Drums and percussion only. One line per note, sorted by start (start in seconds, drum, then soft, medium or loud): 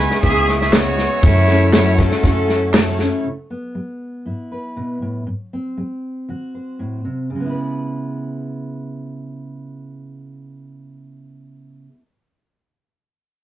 0.11 snare soft
0.23 kick medium
0.23 snare soft
0.49 snare soft
0.61 snare soft
0.73 snare loud
0.73 clap medium
0.73 tambourine loud
0.98 snare soft
1.23 kick loud
1.23 snare soft
1.48 snare soft
1.73 snare loud
1.73 clap medium
1.73 tambourine loud
1.98 kick medium
1.98 snare soft
2.11 snare soft
2.23 kick medium
2.23 snare soft
2.49 snare soft
2.74 snare loud
2.74 clap medium
2.74 tambourine medium
2.99 snare soft